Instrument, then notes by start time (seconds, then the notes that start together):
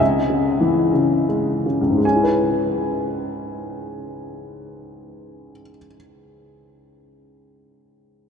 upright piano
0.00 C#2 E5
0.30 C#3
0.61 E3
0.93 C#3
1.29 G#3
1.66 C#3
1.81 C#2
1.89 G#2
1.98 G#3
2.05 C#4 G#5
2.15 E4
2.24 B4